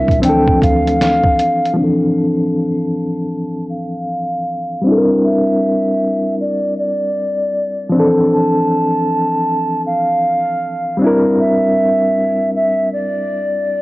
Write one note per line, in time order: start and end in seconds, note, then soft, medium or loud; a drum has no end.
0.00 0.18 G3 medium
0.00 0.19 C4 medium
0.00 0.21 D4 medium
0.00 0.22 E4 medium
0.00 0.23 A#4 medium
0.00 0.19 E5 medium
0.08 0.21 A#1 medium
0.08 kick medium
0.08 closed hi-hat soft
0.20 0.57 D2 medium
0.20 1.72 F3 medium
0.20 1.73 C4 medium
0.20 closed hi-hat medium
0.24 1.76 E3 medium
0.24 1.75 D4 medium
0.24 0.64 G5 medium
0.29 1.77 A4 medium
0.48 kick medium
0.62 1.19 D2 medium
0.62 1.73 F5 medium
0.62 kick medium
0.62 closed hi-hat medium
0.87 closed hi-hat soft
1.01 snare loud
1.01 closed hi-hat medium
1.24 kick medium
1.39 closed hi-hat medium
1.65 closed hi-hat soft
1.74 4.79 F3 medium
1.74 4.80 C4 medium
1.79 4.83 E3 medium
1.79 4.81 D4 medium
1.84 4.84 A4 medium
2.16 3.65 A5 medium
3.70 4.81 F5 medium
4.82 7.87 G3 medium
4.82 7.88 C4 medium
4.87 7.89 D4 medium
4.87 7.90 E4 medium
4.92 4.97 A4 medium
4.98 7.95 A#4 medium
5.24 6.35 E5 medium
6.40 6.74 D5 medium
6.79 7.89 D5 medium
7.90 10.95 F3 medium
7.90 10.96 C4 medium
7.95 10.98 E3 medium
7.95 10.97 D4 medium
8.00 11.00 A4 medium
8.33 9.82 A5 medium
9.86 10.97 F5 medium
10.97 13.82 G3 medium
10.97 13.82 C4 medium
11.02 13.82 D4 medium
11.02 13.82 E4 medium
11.07 13.82 A#4 medium
11.39 12.50 E5 medium
12.55 12.89 E5 medium
12.93 13.82 D5 medium